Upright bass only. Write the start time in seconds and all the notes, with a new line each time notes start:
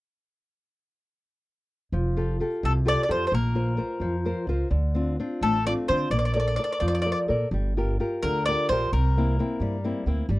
1.92 F1
2.63 C2
3.09 F2
3.32 A#1
4.00 F2
4.47 C#2
4.71 D2
5.41 A1
5.89 D3
6.10 A#1
6.82 F2
7.29 A#2
7.51 G1
8.23 D2
8.69 A#1
8.93 C2
9.60 G2
10.06 D2
10.29 G1